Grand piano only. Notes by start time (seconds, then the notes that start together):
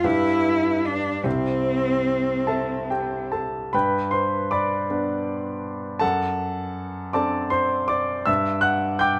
0.04 G2 G4 B4 F5
1.24 C2 G4 C5 E5
2.47 A4 E5 A5
2.90 G4 G5
3.32 A4 A5
3.73 G2 B4 G5 B5
4.11 C5 C6
4.51 D5 B5 D6
4.90 B3 D4 B4
5.99 F#2 A4 F#5 A5
7.13 C4 D4 A4 D5 A5 D6
7.50 C5 C6
7.88 D5 D6
8.26 G2 E5 E6
8.61 F#5 F#6
8.99 G5 D6 G6